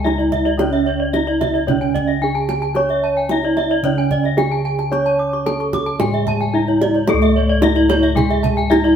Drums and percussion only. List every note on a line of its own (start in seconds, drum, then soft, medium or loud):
0.06 kendang high soft
0.20 kendang slap soft
0.32 kendang low medium
0.46 kendang slap soft
0.59 kendang high medium
0.73 kendang slap soft
1.14 kendang high medium
1.27 kendang slap soft
1.41 kendang high soft
1.41 kendang low medium
1.55 kendang slap soft
1.68 kendang high soft
1.68 kendang low medium
1.81 kendang slap soft
1.96 kendang low medium
2.08 kendang slap soft
2.35 kendang slap soft
2.49 kendang high medium
2.62 kendang slap soft
2.75 kendang high soft
2.89 kendang slap soft
3.29 kendang high medium
3.43 kendang slap soft
3.57 kendang high soft
3.70 kendang slap soft
3.84 kendang low medium
3.98 kendang slap soft
4.11 kendang low medium
4.24 kendang slap soft
4.38 kendang high medium
4.52 kendang slap soft
4.79 kendang slap soft
4.92 kendang high soft
5.06 kendang slap soft
5.33 kendang slap soft
5.46 kendang high medium
5.60 kendang slap soft
5.73 kendang high soft
5.73 kendang low soft
5.86 kendang slap soft
6.00 kendang high medium
6.00 kendang low medium
6.13 kendang slap soft
6.27 kendang low medium
6.41 kendang slap soft
6.68 kendang slap soft
6.81 kendang high medium
6.94 kendang slap soft
7.07 kendang high medium
7.22 kendang slap soft
7.62 kendang high medium
7.76 kendang slap soft
7.90 kendang high medium
8.03 kendang slap soft
8.17 kendang low medium
8.30 kendang slap soft
8.44 kendang low medium
8.58 kendang slap soft
8.71 kendang high medium
8.85 kendang slap soft